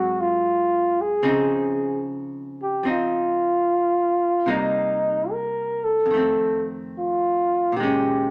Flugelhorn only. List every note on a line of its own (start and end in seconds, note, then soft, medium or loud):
0.00 0.22 F#4 medium
0.20 1.03 F4 medium
1.01 2.06 G#4 medium
2.63 2.91 G4 medium
2.90 4.51 F4 medium
4.50 5.32 D#4 medium
5.31 5.85 A#4 medium
5.84 6.65 A4 medium
6.98 7.78 F4 medium
7.76 8.30 G4 medium